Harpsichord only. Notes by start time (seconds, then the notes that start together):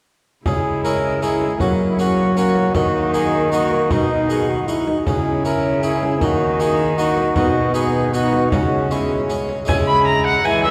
0.46 C#3
0.85 G#3 C#4 E4
1.22 G#3 C#4 E4
1.61 F#3
1.99 A#3 C#4 F#4
2.37 A#3 C#4 F#4
2.75 D#3
3.14 A#3 D#4 F#4
3.52 A#3 D#4 F#4
3.91 B2
4.30 D#4 F#4
4.68 D#4 F#4
5.07 C#3
5.45 C#4 E4
5.83 C#4 E4
6.22 D#3
6.60 A#3 D#4 F#4
6.98 A#3 D#4 F#4
7.36 B2
7.74 B3 D#4 F#4
8.14 B3 D#4 F#4
8.52 C#3
8.91 G#3 C#4
9.30 G#3 C#4
9.65 C#3 G#3 C#4 E4
10.45 E3